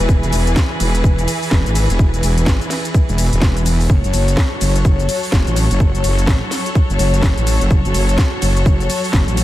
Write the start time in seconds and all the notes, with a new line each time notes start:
Already playing: E3 E4 G#4 B4
0.09 E1, kick, shaker
0.23 E1, closed hi-hat, shaker
0.33 E1, open hi-hat, ride, shaker
0.47 closed hi-hat, shaker
0.56 kick, snare, shaker
0.80 E1, open hi-hat, ride, shaker
0.95 closed hi-hat, shaker
1.04 E1, kick, shaker
1.18 closed hi-hat, shaker
1.28 open hi-hat, ride, shaker
1.42 open hi-hat, shaker
1.51 E1, kick, snare, shaker
1.66 G#1, closed hi-hat, shaker
1.75 open hi-hat, ride, shaker
1.90 E1, closed hi-hat, shaker
1.99 kick, shaker
2.14 closed hi-hat, shaker
2.23 E1, open hi-hat, ride, shaker
2.38 closed hi-hat, shaker
2.46 G#1, kick, snare, shaker
2.61 closed hi-hat, shaker
2.70 snare, open hi-hat, ride, shaker
2.85 closed hi-hat, shaker
2.94 kick, shaker
3.09 E1, closed hi-hat, shaker
3.18 open hi-hat, ride, shaker
3.33 E1, closed hi-hat, shaker
3.42 E1, kick, snare, shaker
3.57 closed hi-hat, shaker
3.66 open hi-hat, ride, shaker
3.80 open hi-hat, shaker
3.90 F#1 F#3 F#4 A4 C#5, kick, shaker
4.04 F#1, closed hi-hat, shaker
4.13 F#1, open hi-hat, ride, shaker
4.28 closed hi-hat, shaker
4.37 kick, snare, shaker
4.61 F#1, open hi-hat, ride, shaker
4.76 closed hi-hat, shaker
4.85 F#1, kick, shaker
4.99 closed hi-hat, shaker
5.09 open hi-hat, ride, shaker
5.23 open hi-hat, shaker
5.32 F#1, kick, snare, shaker
5.47 A1, closed hi-hat, shaker
5.56 open hi-hat, ride, shaker
5.71 F#1, closed hi-hat, shaker
5.80 kick, shaker
5.95 closed hi-hat, shaker
6.04 F#1, open hi-hat, ride, shaker
6.19 closed hi-hat, shaker
6.27 A1, kick, snare, shaker
6.51 snare, open hi-hat, ride, shaker
6.66 closed hi-hat, shaker
6.75 kick, shaker
6.90 F#1, closed hi-hat, shaker
6.99 F#1, open hi-hat, ride, shaker
7.14 closed hi-hat, shaker
7.23 F#1, kick, snare, shaker
7.37 A1, closed hi-hat, shaker
7.47 open hi-hat, ride, shaker
7.61 F#1, closed hi-hat, shaker
7.71 F#1, kick, shaker
7.85 F#1, closed hi-hat, shaker
7.94 F#1, open hi-hat, ride, shaker
8.09 closed hi-hat, shaker
8.18 kick, snare, shaker
8.42 F#1, open hi-hat, ride, shaker
8.57 closed hi-hat, shaker
8.66 F#1, kick, shaker
8.80 closed hi-hat, shaker
8.90 open hi-hat, ride, shaker
9.04 open hi-hat, shaker
9.13 F#1, kick, snare, shaker
9.28 A1, closed hi-hat, shaker
9.37 open hi-hat, ride, shaker